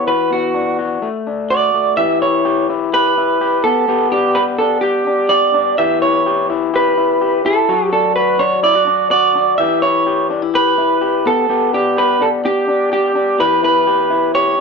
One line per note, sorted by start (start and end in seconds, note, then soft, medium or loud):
0.00 0.12 B3 medium
0.00 0.12 E4 medium
0.07 1.07 E3 medium
0.07 0.78 F#4 medium
0.07 0.30 B4 medium
0.30 1.02 B3 medium
0.30 0.76 F#4 medium
0.54 1.07 D4 medium
0.79 1.08 F#4 medium
1.02 1.73 A3 medium
1.27 2.03 D4 medium
1.50 1.98 F#4 medium
1.50 1.95 D5 medium
1.74 2.03 A3 medium
1.97 3.69 E3 medium
1.97 2.45 G4 medium
1.97 2.20 E5 loud
2.22 2.68 E4 medium
2.22 2.66 C#5 medium
2.45 2.93 G4 medium
2.70 3.16 E4 medium
2.93 3.41 G4 medium
2.93 3.61 B4 medium
3.18 3.70 E4 medium
3.41 3.88 G4 medium
3.64 3.88 B3 medium
3.64 4.11 A4 medium
3.88 7.38 B3 medium
3.88 4.35 G4 medium
4.12 4.59 D4 medium
4.12 4.37 G4 medium
4.35 4.83 G4 medium
4.35 4.41 B4 medium
4.58 5.06 D4 medium
4.58 4.81 A4 medium
4.81 5.31 G4 medium
4.81 5.30 G4 medium
5.07 5.53 D4 medium
5.29 5.78 G4 medium
5.29 5.74 D5 loud
5.54 5.83 D4 medium
5.78 7.68 E3 medium
5.78 6.25 G4 medium
5.78 6.02 E5 loud
6.02 6.49 E4 medium
6.02 6.46 C#5 loud
6.26 6.73 G4 medium
6.50 6.96 E4 medium
6.74 7.20 G4 medium
6.74 7.45 B4 medium
6.98 7.44 E4 medium
7.21 7.69 G4 medium
7.45 7.73 E4 medium
7.45 7.92 A4 medium
7.69 9.59 F#3 medium
7.69 8.15 F#4 medium
7.92 8.38 D4 medium
7.92 8.15 A4 medium
8.16 8.63 F#4 medium
8.16 8.40 B4 medium
8.39 8.86 D4 medium
8.39 8.63 C#5 medium
8.63 8.75 E4 medium
8.63 9.08 D5 loud
8.75 9.10 F#4 medium
8.87 9.34 D4 medium
9.11 9.59 F#4 medium
9.11 9.57 D5 loud
9.35 9.64 D4 medium
9.58 11.31 E3 medium
9.58 10.06 G4 medium
9.58 9.82 E5 loud
9.82 10.30 E4 medium
9.82 10.27 C#5 medium
10.07 10.54 G4 medium
10.30 10.42 D4 medium
10.42 10.77 E4 medium
10.54 11.01 G4 medium
10.54 11.28 B4 loud
10.78 11.30 E4 medium
11.01 11.50 G4 medium
11.26 11.49 B3 medium
11.26 11.74 A4 loud
11.49 14.61 B3 medium
11.49 11.97 G4 medium
11.73 12.19 D4 medium
11.73 11.98 G4 medium
11.97 12.44 G4 medium
11.97 12.22 B4 medium
12.20 12.67 D4 medium
12.20 12.28 A4 medium
12.45 12.91 G4 medium
12.45 12.92 G4 medium
12.68 13.14 D4 medium
12.92 13.39 G4 medium
12.92 13.41 G4 medium
13.15 13.44 D4 medium
13.39 14.61 E3 medium
13.39 13.86 G4 medium
13.39 13.62 B4 loud
13.63 14.09 E4 medium
13.63 14.34 B4 loud
13.87 14.34 G4 medium
14.10 14.58 E4 medium
14.35 14.61 G4 medium
14.35 14.61 C#5 loud